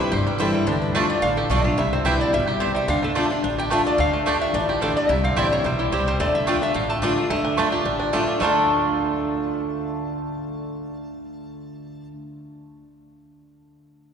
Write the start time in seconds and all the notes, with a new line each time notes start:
Already playing: G3
0.00 C4 E4 B4
0.12 G1 G2 G4 C5
0.27 G3 B4
0.38 E3 G3 C4 E4 A4 C5 G5
0.54 G3 G#4
0.67 D2 D3 D4 A4
0.82 B4
0.95 D3 A3 D4 F4 G4 C5 D5 A5
1.10 D4 D5
1.22 A1 A2 D4 F5
1.37 G4 A4
1.50 B1 D3 A3 D4 F4 D5 A5
1.64 A3 D4 F4 F5
1.78 C2 C3 E4 E5
1.93 C4 C5
2.05 E3 G3 C4 E4 G4 B4 C5 G5
2.20 E4 D5
2.33 G1 B2 G3 E5
2.48 G4
2.60 C3 C4 E4 C5 G5
2.75 G3 E5
2.88 D2 D3 D4 F5
3.03 A3 A4
3.15 D3 A3 D4 F4 G4 D5 A5
3.30 D4 F4
3.43 A1 A2 D4
3.58 G4 G5
3.70 D3 A3 D4 F4 D5 E5 A5
3.85 A3 D4 F4 D5
3.98 D2 D3 D4 F5
4.14 A3
4.26 D3 A3 D4 F4 G4 D5 A5
4.41 D4 E5
4.54 A1 E3 D4 D5
4.69 F4 G4
4.81 D3 A3 D4 F4 A4 D5 A5
4.97 A3 D5
5.09 C2 C3 E4 E5
5.24 C4 F5
5.36 A1 E3 G3 C4 E4 G4 C5 D5 G5
5.52 E4 C#5
5.64 B1 B2 G3 C5
5.79 E4 G4
5.92 C2 C3 C4 E4 G4 C5 G5
6.07 G3 C5
6.20 D2 D3 A3 D5
6.35 E5
6.47 D3 A3 D4 F4 D5 G5 A5
6.62 D4 F4 E5
6.74 A1 A2 G4 F5
6.89 A3 A5
7.02 D3 A3 D4 F4 D5 A5
7.18 A3
7.30 D2 D3 A3
7.45 D4
7.57 D3 A3 D4 F4 D5 A5
7.72 D4 F4 G4
7.85 A1 A2 D4
8.00 D4
8.13 D3 A3 D4 F4 D5 A5
8.28 D4
8.40 D2 D3 A3 D4 F4 D5 A5
8.44 F4 A4